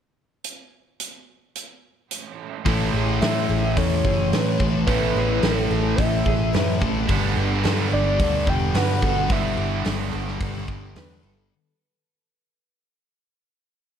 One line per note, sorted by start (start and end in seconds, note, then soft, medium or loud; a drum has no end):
0.44 closed hi-hat soft
1.00 closed hi-hat medium
1.55 closed hi-hat soft
2.11 closed hi-hat medium
2.65 2.92 A1 medium
2.65 4.58 A2 medium
2.65 4.60 E3 medium
2.65 4.58 A3 medium
2.65 4.87 C#4 medium
2.65 2.93 A4 medium
2.65 kick loud
2.65 open hi-hat medium
2.69 4.90 E4 medium
2.93 3.20 A1 medium
2.93 3.21 G#4 medium
3.21 3.48 A2 medium
3.21 3.49 A4 medium
3.21 3.79 E5 loud
3.21 snare loud
3.21 open hi-hat medium
3.49 3.75 A1 medium
3.49 3.77 G#4 medium
3.77 4.03 E2 medium
3.77 4.04 A4 medium
3.77 4.60 C#5 medium
3.77 kick loud
3.77 open hi-hat medium
4.05 4.31 F#1 medium
4.05 4.32 G#4 medium
4.05 kick medium
4.32 4.58 A2 medium
4.32 4.60 B4 medium
4.32 snare loud
4.32 open hi-hat medium
4.59 4.86 A1 medium
4.59 4.86 A2 medium
4.59 4.88 E3 medium
4.59 4.85 A3 medium
4.59 4.87 A4 medium
4.59 kick medium
4.87 5.14 A1 medium
4.87 6.79 A2 medium
4.87 6.82 E3 medium
4.87 6.79 A3 medium
4.87 7.08 C#4 medium
4.87 7.12 E4 loud
4.87 5.15 A4 medium
4.87 5.43 B4 medium
4.87 kick medium
4.87 open hi-hat medium
5.16 5.41 A1 medium
5.16 5.43 G#4 medium
5.42 5.69 A1 medium
5.42 5.97 A4 medium
5.42 5.70 A4 medium
5.42 snare loud
5.42 open hi-hat medium
5.70 5.97 A1 medium
5.70 5.98 G#4 medium
5.96 6.24 A1 medium
5.96 6.25 A4 medium
5.96 6.80 E5 medium
5.96 kick loud
5.96 open hi-hat soft
6.25 6.52 A1 medium
6.25 6.53 G#4 medium
6.25 kick medium
6.53 6.80 F#2 medium
6.53 6.81 B4 medium
6.53 snare loud
6.53 open hi-hat soft
6.81 7.07 A1 medium
6.81 7.08 A2 medium
6.81 7.11 E3 medium
6.81 7.07 A3 medium
6.81 7.07 A4 medium
6.81 kick medium
7.08 7.35 G1 medium
7.08 9.04 G2 medium
7.08 9.02 D3 medium
7.08 9.02 G3 medium
7.08 9.33 B3 loud
7.08 9.33 D4 loud
7.08 7.36 A4 medium
7.08 kick loud
7.08 open hi-hat soft
7.36 7.63 G1 medium
7.36 7.63 G4 medium
7.64 7.90 G2 medium
7.64 7.90 A4 medium
7.64 snare loud
7.64 open hi-hat medium
7.91 8.18 G1 medium
7.91 8.19 G4 medium
7.91 8.51 D5 medium
8.20 8.46 D2 medium
8.20 8.47 A4 medium
8.20 kick loud
8.20 open hi-hat medium
8.47 8.73 E1 medium
8.47 9.05 G4 medium
8.47 8.79 G5 loud
8.47 kick medium
8.74 9.01 G2 medium
8.74 9.02 B4 medium
8.74 9.34 F#5 loud
8.74 snare loud
8.74 open hi-hat medium
9.02 9.29 G1 medium
9.02 9.29 G2 medium
9.02 9.29 D3 medium
9.02 9.31 G3 medium
9.02 9.29 A4 medium
9.02 kick medium
9.29 9.56 G1 medium
9.29 11.21 G2 medium
9.29 11.22 D3 medium
9.29 11.21 G3 medium
9.29 9.57 A4 medium
9.29 9.86 E5 medium
9.29 kick loud
9.29 open hi-hat medium
9.33 11.51 B3 medium
9.33 11.51 D4 medium
9.57 9.84 G1 medium
9.57 9.84 G4 medium
9.85 10.12 G1 medium
9.85 10.12 A4 medium
9.85 snare loud
9.85 open hi-hat medium
10.13 10.40 G1 medium
10.13 10.41 G4 medium
10.28 snare soft
10.41 10.67 G1 medium
10.41 10.68 A4 medium
10.41 kick loud
10.41 open hi-hat medium
10.68 10.94 G1 medium
10.68 10.95 G4 medium
10.68 kick medium
10.95 11.22 E2 medium
10.95 11.23 B4 medium
10.95 snare loud
10.95 open hi-hat soft
11.23 11.50 G1 medium
11.23 11.50 G2 medium
11.23 11.50 D3 medium
11.23 11.49 G3 medium
11.23 11.51 A4 medium